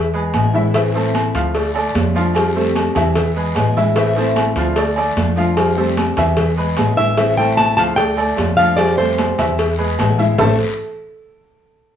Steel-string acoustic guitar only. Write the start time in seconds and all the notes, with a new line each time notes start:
0.34 D3 G#3 B3 E4
0.54 D3 G#3 B3 E4
0.75 E3 A3 C4 E4
0.95 A3 C4 E4
1.55 muted steel-string acoustic guitar stroke
1.95 D3 A3 D4 F4
2.16 A3 D4 F4
2.35 F3 G3 C4 G4
2.56 G3 C4 G4
3.16 muted steel-string acoustic guitar stroke
3.57 D3 G#3 B3 E4
3.77 D3 G#3 B3 E4
3.97 E3 A3 C4 E4
4.17 A3 C4 E4
4.77 muted steel-string acoustic guitar stroke
5.17 D3 A3 D4 F4
5.37 A3 D4 F4
5.56 F3 G3 C4 G4
5.76 G3 C4 G4
6.37 muted steel-string acoustic guitar stroke
6.78 D3 G#3 B3 E4
6.98 D3 G#3 B3 E4
7.18 E3 A3 C4 E4
7.38 A3 C4 E4
7.98 muted steel-string acoustic guitar stroke
8.38 D3 A3 D4 F4
8.58 A3 D4 F4
8.78 F3 G3 C4 G4
8.99 G3 C4 G4
9.59 muted steel-string acoustic guitar stroke
9.99 D3 G#3 B3 E4
10.19 D3 G#3 B3 E4
10.38 A2 E3 A3 C4 E4